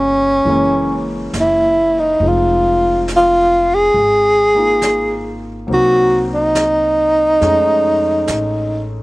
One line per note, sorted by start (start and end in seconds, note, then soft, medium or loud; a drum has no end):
0.00 0.42 G1 medium
0.00 0.48 C#3 soft
0.00 0.45 F3 soft
0.00 0.46 G3 soft
0.00 0.47 A#3 soft
0.00 1.21 C#4 medium
0.45 1.29 F#1 medium
0.45 2.20 E3 soft
0.45 2.21 G#3 soft
0.45 2.22 A#3 soft
0.45 brush sweep soft
0.50 2.23 C#4 medium
1.33 2.17 F#1 medium
1.33 snare soft
1.33 hi-hat pedal soft
1.40 2.01 E4 medium
2.00 2.29 D#4 medium
2.20 3.90 F1 medium
2.20 5.68 F3 soft
2.20 5.69 G#3 soft
2.20 5.68 C4 soft
2.20 brush sweep soft
2.26 4.55 D#4 soft
2.26 3.11 F4 medium
3.08 snare soft
3.08 hi-hat pedal soft
3.16 3.76 F4 medium
3.74 5.44 G#4 medium
3.94 5.64 G#1 medium
3.94 brush sweep soft
4.55 5.67 A#3 soft
4.55 5.69 D#4 soft
4.55 5.70 F4 soft
4.82 snare soft
4.82 hi-hat pedal soft
5.67 7.37 C2 medium
5.67 7.41 F#3 soft
5.67 7.41 A#3 soft
5.67 7.42 C4 soft
5.67 brush sweep soft
5.71 7.42 D#4 soft
5.71 6.26 F#4 medium
6.34 8.86 D#4 medium
6.55 snare soft
6.55 hi-hat pedal soft
7.41 8.24 F2 medium
7.41 9.03 G#3 soft
7.41 9.03 A3 soft
7.41 9.03 C#4 soft
7.41 9.03 D#4 soft
7.41 brush sweep soft
7.41 snare soft
8.27 9.03 A1 medium
8.27 snare soft
8.27 hi-hat pedal soft